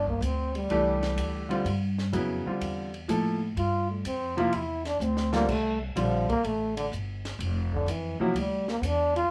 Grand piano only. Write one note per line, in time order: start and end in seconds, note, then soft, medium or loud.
0.70 1.44 E3 medium
0.70 1.44 A3 medium
0.70 1.45 D4 medium
0.70 1.45 G4 medium
1.49 1.63 D3 medium
1.49 1.64 G3 medium
1.49 1.64 C4 medium
1.49 1.64 F4 medium
2.13 2.43 C#3 medium
2.13 2.43 F#3 medium
2.13 2.43 B3 medium
2.13 2.43 E4 medium
2.46 2.87 D3 medium
2.46 2.88 G3 medium
2.46 2.88 C4 medium
2.46 2.88 F4 medium
3.08 3.38 F3 medium
3.08 3.39 A#3 medium
3.08 3.39 E4 medium
3.08 3.39 A4 medium
4.37 4.51 C3 medium
4.37 4.51 F3 medium
4.37 4.51 A#3 medium
4.37 4.52 E4 medium
5.32 5.46 D3 medium
5.32 5.47 G3 medium
5.32 5.47 C4 medium
5.32 5.47 F4 medium
5.96 6.25 D3 medium
5.96 6.26 G3 medium
5.96 6.26 C4 medium
5.96 6.26 F4 medium
8.20 8.33 C3 medium
8.20 8.34 F3 medium
8.20 8.34 A#3 medium
8.20 8.34 E4 medium